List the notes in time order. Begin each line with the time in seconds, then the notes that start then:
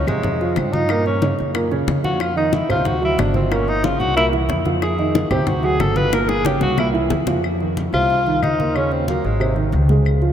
0.07 F2 C3 G#3 C4 C5, high conga, low conga, claves
0.23 high bongo, high conga, low conga
0.41 F3 F4 F5, high conga
0.56 G2 C4, high bongo, low bongo, high conga, claves
0.73 F3 D#4 F4 F5, high conga
0.89 A#2 A#3 A#4, high bongo, high conga, claves
1.06 C#4, high conga
1.22 C#3 C#4 C#5, high bongo, high conga
1.39 F#2, high bongo, high conga
1.55 A#2 A#3 A#4, high bongo, high conga, claves
1.71 C#3 C#4 C#5, high bongo, high conga
1.87 F2, high bongo, low bongo, high conga
2.04 F3 F4 F#4 F5, high bongo, high conga
2.20 F4, high bongo, high conga, claves
2.36 D#3 D#4 D#5, high conga
2.53 E4, high bongo, high conga
2.69 D2 C3 C4 F4 C5, high conga, low conga, claves
2.85 F#4, high bongo, high conga, low conga
3.01 F#3 E4 F#4 F#5, high conga
3.18 G1 D4, high bongo, low bongo, high conga, claves
3.34 F3 C4 F4 F5, high conga
3.51 A#2 A#3 C#4 A#4, high bongo, high conga, claves
3.68 D#4, high conga
3.83 C#3 C#4 F4 C#5, high bongo, high conga
4.00 C2 F#4, high bongo, high conga
4.15 A#2 A#3 E4 A#4, high bongo, high conga, claves
4.33 E3 E4 E5, high bongo, high conga
4.49 F2, high bongo, low bongo, high conga
4.65 F3 F4 F5, high bongo, high conga
4.82 G#4, high bongo, high conga, claves
4.98 D#3 D#4 D#5, high conga
5.15 high bongo, high conga
5.31 D2 C3 C4 G4 C5, high conga, low conga, claves
5.47 F#4, high bongo, high conga, low conga
5.63 F#3 F#4 G#4 F#5, high conga
5.80 G1 A4, high bongo, low bongo, high conga, claves
5.96 F3 F4 B4 F5, high conga
6.12 A#2 A#3 A#4, high bongo, high conga, claves
6.29 G#4, high bongo, high conga
6.45 C#3 C#4 G4 C#5, high bongo, high conga
6.61 C2 F#4, low bongo, high conga
6.78 A#2 A#3 E4 A#4, low bongo, high conga, claves
6.93 E3 E4 E5, high conga
7.10 F2, low bongo, high conga
7.27 F3 F4 F5, low bongo, high conga
7.44 high conga, claves
7.60 D#3 D#4, high conga
7.77 high conga
7.93 C2 C3 C4 F4, high conga, claves
8.10 high conga
8.27 D#3 D#4, high conga
8.43 D#2 D#4, high conga, claves
8.59 A#3 A#4, high conga
8.75 C#3 C#4, high conga, claves
8.91 C4, high conga
9.08 F#3 A#3 F#4, high conga
9.24 G#1 G#3, high conga
9.40 C3 C4, high conga, claves
9.56 D#3 D#4, high conga
9.72 C#2, high conga
9.89 G#3 G#4, high conga
10.05 high conga, claves
10.22 F3 F4, high conga